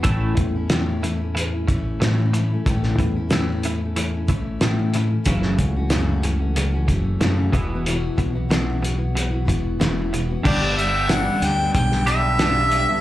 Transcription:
<<
  \new Staff \with { instrumentName = "Harmonica" } { \time 4/4 \key a \major \tempo 4 = 92 r1 | r1 | r1 | r1 |
\key g \lydian d''8 e''8 fis''8 g''8 g''8 e''4. | }
  \new Staff \with { instrumentName = "Steel-string acoustic guitar" } { \time 4/4 \key a \major <a, e a cis' e'>8. <a cis' e'>16 <a, e a cis' e'>8 <e a cis' e'>16 <a cis' e'>8 <a cis' e'>16 <e a cis' e'>8 <a, e a cis' e'>8 <e a cis' e'>16 <a cis' e'>16 | <a, e a cis' e'>8. <a cis' e'>16 <a, e a cis' e'>8 <e a cis' e'>16 <a cis' e'>8 <a cis' e'>16 <e a cis' e'>8 <a, e a cis' e'>8 <e a cis' e'>16 <a cis' e'>16 | <fis, cis e a cis' fis'>8. <e a cis' fis'>16 <fis, cis e a cis' fis'>8 <e a cis' fis'>16 <e a cis' fis'>8 <e a cis' fis'>16 <e a cis' fis'>8 <fis, cis e a cis' fis'>8 <e b e' fis'>16 <e b e' fis'>16 | <e, b, e b e' fis'>8. <e b e' fis'>16 <e, b, e b e' fis'>8 <e b e' fis'>16 <e b e' fis'>8 <e b e' fis'>16 <e b e' fis'>8 <e, b, e b e' fis'>8 <e b e' fis'>16 <e b e' fis'>16 |
\key g \lydian <g, d g b d' g'>16 <g b d' g'>16 <g b d' g'>8 <g, d g b d' g'>8 <g b d' g'>16 <g b d' g'>8 <g b d' g'>16 <g b d' g'>8 <g, d g b d' g'>8. <g b d' g'>16 | }
  \new Staff \with { instrumentName = "Clean electric guitar" } { \clef bass \time 4/4 \key a \major <a, e a>8 <a, e>8 <a, e>8 <a, e>8 <a, e>8 <a, e>8 <a, e>8 <a, e>8 | <a, e>8 <a, e>8 <a, e>8 <a, e>8 <a, e>8 <a, e>8 <a, e>8 <a, e>8 | <fis, cis e>8 <fis, cis>8 <fis, cis>8 <fis, cis>8 <fis, cis>8 <fis, cis>8 <fis, cis>8 <e, b, e>8 | <e, b,>8 <e, b,>8 <e, b,>8 <e, b,>8 <e, b,>8 <e, b,>8 <e, b,>8 <e, b,>8 |
\key g \lydian <g, d g b d' g'>2~ <g, d g b d' g'>8 <g, d g b d' g'>8 <g, d g b d' g'>4 | }
  \new Staff \with { instrumentName = "Fingered electric bass" } { \clef bass \time 4/4 \key a \major a,,8 e,2 a,,8 a,4 | a,,8 e,2 a,,8 a,4 | fis,,8 cis,2 fis,,8 fis,8 e,,8~ | e,,8 b,,2 e,,8 e,,4 |
\key g \lydian g,,4. d,8 b,,2 | }
  \new DrumStaff \with { instrumentName = "Drums" } \drummode { \time 4/4 <hh bd>8 <hh bd>8 <hh sn>8 hh8 hh8 <hh bd>8 <hh sn>8 hh8 | <hh bd>16 sn16 <hh bd>8 <hh sn>8 hh8 hh8 <hh bd>8 <hh sn>8 hh8 | <hh bd>16 sn16 <hh bd>8 <hh sn>8 hh8 hh8 <hh bd>8 <hh sn>8 <hh bd>8 | hh8 <hh bd>8 <hh sn>8 hh8 hh8 <hh bd>8 <hh sn>8 hh8 |
<cymc bd>8 hh8 <hh sn>8 hh8 <hh bd>16 sn16 hh8 <hh sn>8 hh8 | }
>>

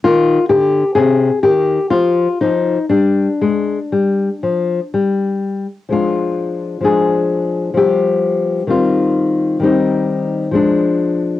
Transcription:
\new Staff \with { instrumentName = "Nylon-string guitar" } { \clef bass \time 3/4 \key c \minor \tempo 4 = 64 << { f'8 g'8 aes'8 g'8 f'8 ees'8 | d'2~ d'8 r8 | <f aes d' f'>4 <f aes d' aes'>4 <f g b g'>4 | <ees g c' f'>4 <ees g c' ees'>4 <f aes d'>4 | } \\ { ees8 d8 c8 ees8 f8 f8 | g8 aes8 g8 f8 g4 | r2. | r2. | } >> }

